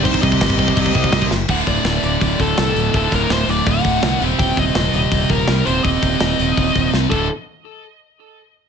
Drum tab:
CC |x-x-x-x-x-x-x---|x---------------|----------------|----------------|
HH |----------------|--o-o-o-o-o-o-o-|o-o-o-o-o-o-o-o-|o-o-o-o-o-o-o-o-|
SD |----o-------o-o-|----o-------o---|----o-------o---|----o-------o---|
BD |oooooooooooooo--|o-o-----o-o-----|o-o-----o-o-----|o-o-----o-o-----|

CC |--------------x-|----------------|
HH |o-o-o-o-o-o-----|----------------|
SD |----o-------o---|----------------|
BD |o-o-----o-o---o-|----------------|